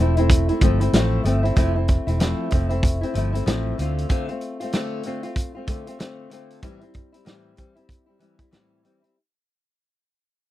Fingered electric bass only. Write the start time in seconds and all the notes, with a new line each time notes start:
0.00 E1
0.62 G1
0.93 A1
1.24 G1
1.57 F1
2.07 E1
2.53 F1
3.15 G1
3.47 A1
3.79 D2